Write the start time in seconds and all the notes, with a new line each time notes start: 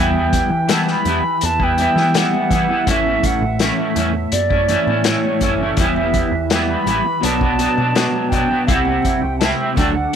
Already playing: E2 E3 G3 B3 B4
0.00 E4 G4 E5 G5
0.33 kick, closed hi-hat, low conga
0.50 E3, muted clean electric guitar stroke
0.68 E3 G3 B3 E4 A5, snare, closed hi-hat
0.87 B5, snare
1.05 E2 E3 G3 B3 E4, closed hi-hat, low conga
1.22 muted clean electric guitar stroke
1.41 E2 A5, closed hi-hat, high conga
1.59 G3 B3 E4 G5, kick
1.78 E3 G3 B3 E4, closed hi-hat
1.96 E3 G3 B3 E4, snare, high conga
2.14 E3 G3 B3 E4 F#5, snare, closed hi-hat
2.33 high conga
2.51 E3 G3 B3 E4, kick, closed hi-hat, low conga
2.68 G3 B3 E4
2.86 A1 A2 E3 A3 C#4 E4 A4 E5, kick, closed hi-hat, low conga
3.06 high conga
3.23 F#5, kick, closed hi-hat, low conga
3.41 A1, muted clean electric guitar stroke
3.59 A2 E3 A3 C#4 E4 E5, snare, closed hi-hat
3.95 E2 E3 A3 C#4 E4, closed hi-hat, low conga
4.13 muted clean electric guitar stroke
4.32 F#2 D5, closed hi-hat, high conga
4.50 A3 C#4 E4, kick
4.68 E3 A3 C#4 E4, closed hi-hat
4.87 A2 A3 C#4 E4, high conga
5.04 A2 E3 A3 C#4 E4 C#5, snare, closed hi-hat
5.24 high conga
5.40 F#1 E3 A3 C#4 E4, kick, closed hi-hat, low conga
5.60 A3 C#4 E4
5.77 E1 E3 G3 B3 E4 G4 B4 E5, kick, closed hi-hat, low conga
5.96 high conga
6.14 kick, closed hi-hat, low conga
6.32 E2, muted clean electric guitar stroke
6.50 E3 G3 B3 E4 G5, snare, closed hi-hat
6.70 B5
6.86 A1 E3 G3 B3 E4, closed hi-hat, low conga
7.05 muted clean electric guitar stroke
7.21 B1 B2 F#3 B3 D4 D5 A5, closed hi-hat, high conga
7.41 F#3 B3 D4, kick
7.58 B2 F#3 B3 D4, closed hi-hat
7.77 B2 F#3 B3 D4, high conga
7.94 B2 F#3 B3 D4, snare, closed hi-hat
8.13 high conga
8.29 B2 G5, kick, closed hi-hat, low conga
8.33 F#3 B3 D4
8.50 F#3 B3 D4
8.66 C2 C3 G3 C4 E4 G4 C5 E5 F#5, kick, closed hi-hat, low conga
8.85 high conga
9.02 kick, closed hi-hat, low conga
9.21 C2 G5, muted clean electric guitar stroke
9.39 C3 G3 C4 E4 A5, snare, closed hi-hat
9.76 D2 D3 F#3 A3 D4 F#4 A4 D5 F#5 G5, kick, closed hi-hat, low conga
9.93 F#5, muted clean electric guitar stroke